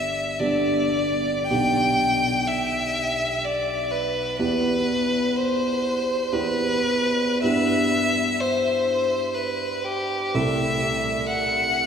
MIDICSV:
0, 0, Header, 1, 3, 480
1, 0, Start_track
1, 0, Tempo, 991736
1, 193, Tempo, 1096892
1, 673, Time_signature, 3, 2, 24, 8
1, 673, Tempo, 967742
1, 3073, Tempo, 1102941
1, 3553, Tempo, 961538
1, 5763, End_track
2, 0, Start_track
2, 0, Title_t, "Violin"
2, 0, Program_c, 0, 40
2, 0, Note_on_c, 0, 76, 50
2, 193, Note_on_c, 0, 74, 52
2, 199, Note_off_c, 0, 76, 0
2, 663, Note_off_c, 0, 74, 0
2, 666, Note_on_c, 0, 79, 53
2, 1158, Note_on_c, 0, 76, 53
2, 1166, Note_off_c, 0, 79, 0
2, 1640, Note_on_c, 0, 74, 45
2, 1647, Note_off_c, 0, 76, 0
2, 1867, Note_on_c, 0, 71, 45
2, 1875, Note_off_c, 0, 74, 0
2, 2107, Note_off_c, 0, 71, 0
2, 2110, Note_on_c, 0, 71, 53
2, 2588, Note_on_c, 0, 72, 51
2, 2595, Note_off_c, 0, 71, 0
2, 3068, Note_on_c, 0, 71, 56
2, 3075, Note_off_c, 0, 72, 0
2, 3549, Note_off_c, 0, 71, 0
2, 3552, Note_on_c, 0, 76, 64
2, 4036, Note_on_c, 0, 72, 55
2, 4044, Note_off_c, 0, 76, 0
2, 4502, Note_on_c, 0, 71, 45
2, 4509, Note_off_c, 0, 72, 0
2, 4754, Note_on_c, 0, 67, 51
2, 4762, Note_off_c, 0, 71, 0
2, 5004, Note_on_c, 0, 76, 59
2, 5011, Note_off_c, 0, 67, 0
2, 5478, Note_off_c, 0, 76, 0
2, 5481, Note_on_c, 0, 78, 62
2, 5763, Note_off_c, 0, 78, 0
2, 5763, End_track
3, 0, Start_track
3, 0, Title_t, "Grand piano"
3, 0, Program_c, 1, 0
3, 0, Control_c, 1, 64, 127
3, 0, Note_on_c, 1, 31, 31
3, 0, Note_on_c, 1, 59, 25
3, 0, Note_on_c, 1, 62, 24
3, 0, Note_on_c, 1, 67, 26
3, 172, Note_off_c, 1, 67, 0
3, 173, Note_off_c, 1, 31, 0
3, 173, Note_off_c, 1, 59, 0
3, 173, Note_off_c, 1, 62, 0
3, 193, Note_on_c, 1, 31, 31
3, 194, Note_on_c, 1, 59, 26
3, 194, Note_on_c, 1, 67, 27
3, 195, Note_on_c, 1, 62, 26
3, 659, Note_off_c, 1, 31, 0
3, 659, Note_off_c, 1, 59, 0
3, 659, Note_off_c, 1, 62, 0
3, 659, Note_off_c, 1, 67, 0
3, 677, Note_on_c, 1, 35, 33
3, 677, Note_on_c, 1, 59, 26
3, 678, Note_on_c, 1, 62, 25
3, 680, Note_on_c, 1, 67, 27
3, 684, Control_c, 1, 64, 0
3, 782, Control_c, 1, 64, 127
3, 2093, Note_off_c, 1, 35, 0
3, 2093, Note_off_c, 1, 59, 0
3, 2094, Note_off_c, 1, 62, 0
3, 2095, Note_off_c, 1, 67, 0
3, 2110, Note_on_c, 1, 40, 35
3, 2110, Note_on_c, 1, 59, 30
3, 2111, Note_on_c, 1, 64, 28
3, 2111, Note_on_c, 1, 67, 29
3, 2119, Control_c, 1, 64, 0
3, 2190, Control_c, 1, 64, 127
3, 3054, Note_off_c, 1, 40, 0
3, 3054, Note_off_c, 1, 59, 0
3, 3054, Note_off_c, 1, 64, 0
3, 3054, Note_off_c, 1, 67, 0
3, 3069, Note_on_c, 1, 40, 38
3, 3069, Note_on_c, 1, 59, 31
3, 3070, Note_on_c, 1, 64, 29
3, 3070, Note_on_c, 1, 67, 32
3, 3537, Note_off_c, 1, 40, 0
3, 3538, Note_off_c, 1, 59, 0
3, 3538, Note_off_c, 1, 64, 0
3, 3538, Note_off_c, 1, 67, 0
3, 3550, Note_on_c, 1, 59, 31
3, 3551, Note_on_c, 1, 43, 36
3, 3551, Note_on_c, 1, 64, 28
3, 3553, Note_on_c, 1, 67, 30
3, 3564, Control_c, 1, 64, 0
3, 3652, Control_c, 1, 64, 127
3, 4984, Note_off_c, 1, 43, 0
3, 4984, Note_off_c, 1, 59, 0
3, 4985, Note_off_c, 1, 64, 0
3, 4986, Note_off_c, 1, 67, 0
3, 5004, Note_on_c, 1, 57, 30
3, 5004, Note_on_c, 1, 64, 34
3, 5005, Note_on_c, 1, 36, 40
3, 5005, Note_on_c, 1, 69, 31
3, 5015, Control_c, 1, 64, 0
3, 5093, Control_c, 1, 64, 127
3, 5763, Note_off_c, 1, 36, 0
3, 5763, Note_off_c, 1, 57, 0
3, 5763, Note_off_c, 1, 64, 0
3, 5763, Note_off_c, 1, 69, 0
3, 5763, End_track
0, 0, End_of_file